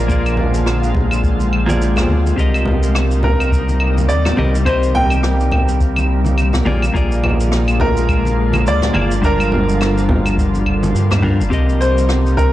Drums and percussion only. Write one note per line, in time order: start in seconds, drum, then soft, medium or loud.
0.09 kick loud
0.09 shaker medium
0.26 claves medium
0.26 shaker soft
0.37 low conga medium
0.54 shaker medium
0.66 cross-stick medium
0.66 claves medium
0.66 shaker medium
0.84 shaker medium
0.94 kick loud
0.94 low conga medium
1.11 claves medium
1.11 shaker medium
1.24 kick loud
1.24 shaker medium
1.39 high conga medium
1.39 shaker soft
1.53 claves medium
1.69 high conga medium
1.69 shaker medium
1.82 shaker medium
1.96 cross-stick medium
1.96 low conga medium
1.96 claves medium
1.96 shaker soft
2.10 high conga medium
2.26 shaker medium
2.38 kick loud
2.38 shaker medium
2.54 claves medium
2.54 shaker medium
2.65 low conga medium
2.83 shaker medium
2.95 cross-stick medium
2.95 claves medium
2.95 shaker medium
3.11 shaker medium
3.23 kick loud
3.23 low conga medium
3.40 claves medium
3.40 shaker medium
3.52 kick loud
3.52 shaker medium
3.69 high conga medium
3.69 shaker soft
3.80 claves medium
3.98 high conga medium
3.98 shaker medium
4.09 shaker medium
4.25 cross-stick medium
4.25 low conga medium
4.25 claves medium
4.25 shaker soft
4.38 high conga medium
4.55 shaker medium
4.66 kick loud
4.66 claves medium
4.66 shaker medium
4.83 shaker medium
4.95 low conga medium
5.10 claves medium
5.10 shaker medium
5.23 cross-stick medium
5.23 shaker medium
5.40 shaker soft
5.52 kick medium
5.52 low conga medium
5.52 claves medium
5.68 shaker medium
5.81 kick loud
5.81 shaker medium
5.96 high conga medium
5.96 claves medium
5.96 shaker medium
6.24 high conga medium
6.24 shaker medium
6.38 claves medium
6.38 shaker medium
6.53 cross-stick medium
6.53 low conga medium
6.53 shaker medium
6.66 high conga medium
6.82 claves medium
6.82 shaker medium
6.95 kick loud
6.95 shaker medium
7.12 shaker medium
7.23 low conga medium
7.23 claves medium
7.40 shaker medium
7.52 cross-stick medium
7.52 shaker medium
7.68 claves medium
7.68 shaker soft
7.80 kick medium
7.80 low conga medium
7.97 shaker medium
8.09 kick loud
8.09 claves medium
8.09 shaker medium
8.25 high conga medium
8.25 shaker soft
8.53 high conga medium
8.53 claves medium
8.53 shaker medium
8.67 shaker medium
8.82 cross-stick medium
8.82 low conga medium
8.82 shaker soft
8.94 high conga medium
8.94 claves medium
9.11 shaker medium
9.23 kick loud
9.23 shaker medium
9.40 claves medium
9.40 shaker medium
9.52 low conga medium
9.69 shaker medium
9.81 cross-stick medium
9.81 claves medium
9.81 shaker medium
9.98 shaker soft
10.09 kick medium
10.09 low conga medium
10.26 claves medium
10.26 shaker medium
10.38 kick loud
10.38 shaker medium
10.54 high conga medium
10.54 shaker soft
10.66 kick medium
10.66 claves medium
10.83 high conga medium
10.83 shaker medium
10.96 shaker medium
11.11 cross-stick medium
11.11 low conga medium
11.11 claves medium
11.11 shaker soft
11.23 kick medium
11.23 high conga medium
11.41 shaker medium
11.52 kick loud
11.52 shaker medium
11.69 shaker soft
11.81 shaker medium
11.98 shaker medium
12.09 cross-stick medium
12.09 shaker soft
12.26 shaker soft
12.38 kick loud
12.38 shaker medium